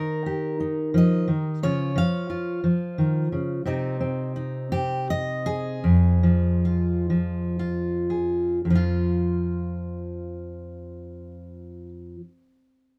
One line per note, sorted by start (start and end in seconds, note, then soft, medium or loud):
0.00 1.27 D#3 medium
0.00 0.59 D#4 medium
0.00 1.63 A#4 medium
0.26 1.59 G4 soft
0.60 0.94 D#4 medium
0.94 1.29 F3 medium
0.94 1.65 D#5 medium
1.28 1.63 D#3 medium
1.63 1.97 C#3 medium
1.63 1.94 F3 soft
1.63 2.29 F4 soft
1.63 2.65 C#5 medium
1.95 2.62 F3 medium
1.95 3.67 F5 loud
2.30 3.62 F4 medium
2.64 3.66 F3 medium
2.98 3.32 D#3 medium
3.32 3.65 C#3 medium
3.65 5.83 C3 medium
3.65 4.00 C4 medium
3.65 4.35 D#4 soft
3.65 4.71 D#5 medium
4.00 4.72 C4 medium
4.36 5.79 D#4 soft
4.72 6.23 C4 medium
4.72 5.08 G4 medium
5.10 5.85 D#5 loud
5.46 8.09 G#4 medium
5.84 8.64 F2 medium
6.23 7.09 F3 medium
6.65 7.58 F4 soft
7.10 8.69 F3 medium
7.59 8.59 F4 medium
8.10 8.58 G#4 soft
8.65 12.15 F2 medium
8.70 12.20 F3 medium
8.75 11.89 F4 medium